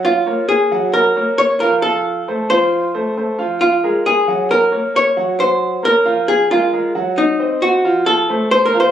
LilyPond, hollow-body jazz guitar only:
\new Staff \with { instrumentName = "Hollow-body jazz guitar" } { \time 4/4 \key ges \lydian \tempo 4 = 134 f'4 aes'4 bes'4 des''8 bes'8 | a'4. c''4. r4 | f'4 aes'4 bes'4 des''4 | c''4 bes'4 aes'8 f'4 r8 |
ees'4 ges'4 a'4 \tuplet 3/2 { c''8 bes'8 c''8 } | }